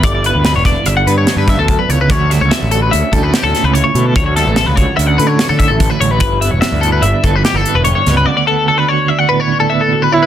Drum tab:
HH |xxxxxxxxxx|xxxxxxxxxx|xxxxxxxxxx|xxxxxxxxxx|
SD |--oo--oo--|-oo---oo--|-oo---o---|--o---o--o|
BD |o--o---oo-|o----o----|o--o---oo-|o----o----|

HH |----------|
SD |----------|
BD |----------|